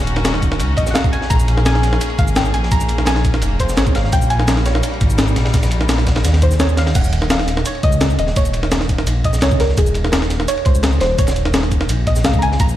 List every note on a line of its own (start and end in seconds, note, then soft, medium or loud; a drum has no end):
0.00 0.61 D#1 loud
0.00 6.91 C#4 medium
0.00 1.26 D#4 medium
0.00 1.26 F#4 medium
0.00 0.38 C#5 medium
0.07 closed hi-hat medium
0.16 snare soft
0.16 ride medium
0.24 snare loud
0.24 closed hi-hat medium
0.24 ride medium
0.24 cabasa soft
0.34 snare soft
0.42 kick medium
0.42 closed hi-hat medium
0.42 ride medium
0.42 cabasa soft
0.52 snare soft
0.59 0.76 C#2 medium
0.59 closed hi-hat medium
0.59 ride medium
0.59 cabasa soft
0.77 0.93 A#1 medium
0.77 0.91 D#5 loud
0.77 kick medium
0.77 closed hi-hat medium
0.77 ride medium
0.77 cabasa soft
0.86 snare medium
0.86 cabasa medium
0.91 1.11 F5 loud
0.91 0.95 F#5 medium
0.91 snare loud
0.95 snare loud
0.95 closed hi-hat medium
0.95 ride medium
0.95 cabasa soft
1.04 kick loud
1.04 cabasa soft
1.12 1.21 G#5 loud
1.12 closed hi-hat medium
1.12 ride medium
1.21 snare medium
1.30 2.00 A#1 loud
1.30 6.91 A#3 medium
1.30 4.10 G#4 medium
1.30 1.67 A#5 loud
1.30 kick loud
1.30 closed hi-hat medium
1.30 ride medium
1.30 cabasa soft
1.40 cabasa medium
1.48 closed hi-hat medium
1.48 ride medium
1.57 snare soft
1.65 1.99 G#5 loud
1.65 snare loud
1.65 closed hi-hat medium
1.65 ride medium
1.65 cabasa medium
1.74 snare medium
1.74 snare soft
1.83 snare medium
1.83 closed hi-hat medium
1.83 ride medium
1.83 cabasa soft
1.93 snare soft
2.01 closed hi-hat medium
2.01 ride medium
2.01 cabasa soft
2.10 ride soft
2.19 2.53 G#1 medium
2.19 2.37 F5 loud
2.19 kick loud
2.19 closed hi-hat medium
2.19 ride medium
2.19 cabasa soft
2.28 cabasa medium
2.36 2.44 G5 loud
2.36 snare loud
2.36 closed hi-hat medium
2.36 ride medium
2.36 cabasa medium
2.45 cabasa soft
2.54 2.70 A#1 loud
2.54 2.72 G#5 loud
2.54 closed hi-hat medium
2.54 ride medium
2.63 snare soft
2.72 3.41 A#1 loud
2.72 3.04 A#5 loud
2.72 kick loud
2.72 closed hi-hat medium
2.72 ride medium
2.72 cabasa medium
2.81 ride soft
2.81 cabasa medium
2.88 closed hi-hat medium
2.88 ride medium
2.98 snare soft
3.05 3.40 G#5 loud
3.05 snare loud
3.05 closed hi-hat loud
3.05 ride loud
3.05 cabasa medium
3.16 snare medium
3.16 snare soft
3.25 kick medium
3.25 closed hi-hat medium
3.25 ride medium
3.25 cabasa soft
3.34 snare soft
3.42 3.76 F1 loud
3.42 closed hi-hat medium
3.42 ride medium
3.42 cabasa medium
3.59 3.78 C5 medium
3.59 kick medium
3.59 closed hi-hat medium
3.59 ride medium
3.59 cabasa soft
3.69 snare soft
3.69 cabasa medium
3.77 4.11 G#1 medium
3.77 3.96 C#5 loud
3.77 snare loud
3.77 closed hi-hat medium
3.77 ride medium
3.77 cabasa soft
3.87 kick loud
3.87 cabasa soft
3.95 4.14 F5 loud
3.95 snare loud
3.95 closed hi-hat medium
3.95 ride medium
4.04 snare soft
4.12 4.82 A#1 loud
4.12 6.92 G3 medium
4.12 4.29 G5 loud
4.12 kick loud
4.12 closed hi-hat medium
4.12 ride medium
4.12 cabasa medium
4.22 cabasa medium
4.30 4.67 G#5 loud
4.30 closed hi-hat medium
4.30 ride medium
4.39 snare soft
4.48 snare loud
4.48 closed hi-hat loud
4.48 ride loud
4.48 cabasa medium
4.57 snare medium
4.57 snare soft
4.66 6.56 C#5 medium
4.66 snare medium
4.66 closed hi-hat medium
4.66 ride medium
4.66 cabasa soft
4.75 snare soft
4.83 closed hi-hat medium
4.83 ride medium
4.83 cabasa soft
4.93 ride soft
5.01 5.35 G#1 medium
5.01 kick loud
5.01 closed hi-hat medium
5.01 ride medium
5.01 cabasa soft
5.10 cabasa medium
5.18 snare loud
5.18 closed hi-hat loud
5.18 ride medium
5.18 cabasa medium
5.28 cabasa soft
5.36 5.52 A#1 loud
5.36 snare loud
5.36 closed hi-hat medium
5.36 ride medium
5.45 snare loud
5.45 ride medium
5.54 6.23 A#1 loud
5.54 kick loud
5.54 snare loud
5.54 closed hi-hat loud
5.54 ride medium
5.54 cabasa medium
5.63 snare medium
5.63 ride medium
5.63 cabasa medium
5.71 closed hi-hat medium
5.71 ride medium
5.81 snare soft
5.89 snare loud
5.89 closed hi-hat loud
5.89 ride medium
5.89 cabasa medium
5.98 snare medium
5.98 snare soft
6.07 kick medium
6.07 snare loud
6.07 closed hi-hat medium
6.07 ride medium
6.07 cabasa soft
6.16 snare loud
6.16 snare soft
6.16 ride medium
6.24 6.94 D#2 medium
6.24 snare loud
6.24 closed hi-hat medium
6.24 ride medium
6.24 cabasa medium
6.33 snare loud
6.33 ride medium
6.42 6.61 C5 loud
6.42 kick medium
6.42 closed hi-hat medium
6.42 ride medium
6.42 cabasa soft
6.51 snare medium
6.51 cabasa medium
6.60 6.77 C#5 loud
6.60 snare loud
6.60 closed hi-hat loud
6.60 cabasa medium
6.69 cabasa soft
6.77 6.86 F5 loud
6.77 snare loud
6.77 closed hi-hat medium
6.77 ride medium
6.87 snare loud
6.87 ride medium
6.95 7.64 D#1 loud
6.95 7.32 F#5 loud
6.95 kick loud
6.95 closed hi-hat medium
6.95 ride loud
6.95 crash loud
6.95 cabasa soft
7.04 cabasa medium
7.13 closed hi-hat medium
7.13 ride medium
7.22 snare medium
7.30 7.67 F5 loud
7.30 snare loud
7.30 closed hi-hat loud
7.30 ride loud
7.30 cabasa medium
7.39 snare medium
7.39 snare soft
7.47 snare medium
7.47 closed hi-hat medium
7.47 ride medium
7.47 cabasa soft
7.57 snare medium
7.65 7.74 C#5 loud
7.65 closed hi-hat loud
7.65 ride medium
7.65 cabasa soft
7.75 ride soft
7.83 8.17 C#2 medium
7.83 8.18 D#5 loud
7.83 kick loud
7.83 closed hi-hat medium
7.83 ride medium
7.92 cabasa medium
8.01 snare loud
8.01 closed hi-hat loud
8.01 ride medium
8.01 cabasa medium
8.10 cabasa soft
8.18 8.35 D#1 loud
8.18 8.37 D#5 loud
8.18 closed hi-hat medium
8.18 ride medium
8.27 snare medium
8.36 9.06 D#1 loud
8.36 9.28 C#5 loud
8.36 kick loud
8.36 closed hi-hat medium
8.36 ride loud
8.36 cabasa soft
8.45 ride soft
8.45 cabasa medium
8.53 closed hi-hat medium
8.53 ride medium
8.63 snare medium
8.71 snare loud
8.71 closed hi-hat medium
8.71 ride medium
8.71 cabasa soft
8.81 snare medium
8.81 snare soft
8.89 kick medium
8.89 closed hi-hat medium
8.89 ride medium
8.89 cabasa soft
8.98 snare medium
9.07 9.41 A#1 loud
9.07 closed hi-hat medium
9.07 ride medium
9.07 cabasa soft
9.24 9.37 D#5 loud
9.24 kick medium
9.24 closed hi-hat medium
9.24 ride medium
9.33 snare medium
9.33 cabasa medium
9.38 9.76 C#2 medium
9.38 9.42 D#5 medium
9.38 snare loud
9.38 closed hi-hat medium
9.38 ride medium
9.38 cabasa soft
9.43 9.61 C#5 loud
9.51 kick loud
9.51 cabasa soft
9.60 9.78 A#4 loud
9.60 snare loud
9.60 closed hi-hat medium
9.60 ride medium
9.69 snare medium
9.77 10.47 D#1 loud
9.77 10.14 G#4 medium
9.77 kick loud
9.77 closed hi-hat medium
9.77 ride loud
9.77 cabasa soft
9.87 cabasa medium
9.94 closed hi-hat medium
9.94 ride medium
10.04 snare soft
10.12 10.49 A#4 medium
10.12 snare loud
10.12 closed hi-hat medium
10.12 ride medium
10.12 cabasa soft
10.22 snare medium
10.22 snare soft
10.30 snare medium
10.30 closed hi-hat medium
10.30 ride medium
10.30 cabasa soft
10.40 snare medium
10.48 10.66 C#5 loud
10.48 closed hi-hat medium
10.48 ride medium
10.48 cabasa soft
10.57 ride soft
10.65 11.00 C#2 medium
10.65 11.00 C5 loud
10.65 kick loud
10.65 closed hi-hat medium
10.65 ride medium
10.75 cabasa medium
10.83 snare loud
10.83 closed hi-hat medium
10.83 ride medium
10.83 cabasa soft
10.93 cabasa soft
11.00 11.17 D#1 loud
11.00 11.09 C5 loud
11.00 snare loud
11.00 closed hi-hat medium
11.00 ride medium
11.18 11.88 D#1 loud
11.18 12.03 C#5 loud
11.18 kick loud
11.18 closed hi-hat medium
11.18 ride medium
11.18 cabasa soft
11.27 snare loud
11.27 ride medium
11.27 cabasa medium
11.36 closed hi-hat medium
11.45 snare soft
11.45 ride medium
11.54 snare loud
11.54 closed hi-hat medium
11.54 ride medium
11.54 cabasa soft
11.63 snare soft
11.71 kick medium
11.71 closed hi-hat medium
11.71 ride medium
11.71 cabasa soft
11.81 snare soft
11.89 12.23 A#1 loud
11.89 closed hi-hat medium
11.89 ride medium
11.89 cabasa soft
12.07 12.25 D#5 loud
12.07 kick medium
12.07 closed hi-hat medium
12.07 ride medium
12.16 snare medium
12.16 cabasa medium
12.24 12.58 C#2 medium
12.24 12.37 F5 loud
12.24 snare loud
12.24 closed hi-hat medium
12.24 ride loud
12.24 cabasa medium
12.34 kick loud
12.34 cabasa soft
12.39 12.43 A#5 medium
12.39 closed hi-hat medium
12.39 ride medium
12.43 12.51 G#5 loud
12.52 snare medium
12.60 12.77 A#1 loud
12.60 12.77 A#5 loud
12.60 kick loud
12.60 closed hi-hat medium
12.60 ride medium
12.60 cabasa medium
12.69 cabasa medium